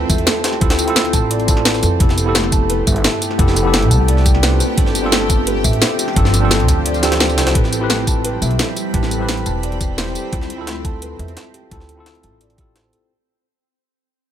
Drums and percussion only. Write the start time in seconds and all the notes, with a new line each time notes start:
0.09 kick, closed hi-hat, tambourine
0.18 closed hi-hat
0.27 snare, closed hi-hat
0.44 snare, closed hi-hat, tambourine
0.53 snare
0.61 kick, closed hi-hat
0.70 snare, closed hi-hat
0.79 snare, closed hi-hat, tambourine
0.88 closed hi-hat
0.96 snare, closed hi-hat, tambourine
1.05 snare, closed hi-hat
1.13 kick, snare, closed hi-hat, tambourine
1.31 closed hi-hat
1.40 closed hi-hat
1.48 kick, closed hi-hat, tambourine
1.57 snare
1.65 snare, closed hi-hat
1.74 snare, tambourine
1.83 closed hi-hat, tambourine
2.00 kick, closed hi-hat
2.09 snare
2.18 closed hi-hat, tambourine
2.35 snare, closed hi-hat, tambourine
2.44 snare
2.52 kick, closed hi-hat, tambourine
2.70 closed hi-hat
2.87 kick, closed hi-hat, tambourine
2.96 closed hi-hat
3.04 snare, closed hi-hat
3.22 closed hi-hat, tambourine
3.31 snare
3.39 kick, closed hi-hat
3.48 snare
3.56 snare, closed hi-hat, tambourine
3.74 snare, closed hi-hat, tambourine
3.82 snare, closed hi-hat
3.91 kick, closed hi-hat, tambourine
4.08 closed hi-hat
4.17 snare
4.26 kick, closed hi-hat, tambourine
4.35 snare
4.43 snare, closed hi-hat
4.60 closed hi-hat, tambourine
4.78 kick, closed hi-hat
4.86 snare
4.95 closed hi-hat, tambourine
5.12 snare, closed hi-hat, tambourine
5.21 snare
5.30 kick, closed hi-hat, tambourine
5.47 closed hi-hat
5.64 kick, closed hi-hat, tambourine
5.73 closed hi-hat
5.82 snare, closed hi-hat
5.99 closed hi-hat, tambourine
6.08 snare
6.16 kick, closed hi-hat
6.25 snare
6.34 snare, closed hi-hat, tambourine
6.51 snare, closed hi-hat, tambourine
6.60 snare, closed hi-hat
6.68 kick, snare, closed hi-hat, tambourine
6.86 closed hi-hat
6.94 closed hi-hat, tambourine
7.03 snare, closed hi-hat, tambourine
7.12 snare, closed hi-hat
7.20 snare, closed hi-hat
7.29 tambourine
7.38 snare, closed hi-hat, tambourine
7.47 snare, closed hi-hat
7.55 kick, closed hi-hat
7.64 snare
7.72 closed hi-hat, tambourine
7.90 snare, closed hi-hat
8.07 kick, closed hi-hat, tambourine
8.25 closed hi-hat
8.42 closed hi-hat, tambourine
8.51 closed hi-hat
8.59 snare, closed hi-hat
8.76 closed hi-hat, tambourine
8.94 kick, closed hi-hat
9.03 snare
9.11 closed hi-hat, tambourine
9.29 snare, closed hi-hat
9.37 closed hi-hat
9.46 closed hi-hat, tambourine
9.63 closed hi-hat
9.72 closed hi-hat
9.81 kick, closed hi-hat, tambourine
9.98 snare, closed hi-hat
10.07 snare
10.15 closed hi-hat, tambourine
10.33 kick, closed hi-hat
10.41 snare
10.50 closed hi-hat
10.67 snare, closed hi-hat
10.85 kick, closed hi-hat
11.02 closed hi-hat
11.19 closed hi-hat
11.28 closed hi-hat
11.37 snare, closed hi-hat
11.54 closed hi-hat
11.71 kick, closed hi-hat
11.80 snare
11.89 closed hi-hat
12.06 snare, closed hi-hat
12.15 closed hi-hat
12.23 closed hi-hat
12.41 closed hi-hat
12.50 closed hi-hat
12.58 kick, closed hi-hat
12.76 snare, closed hi-hat
12.93 closed hi-hat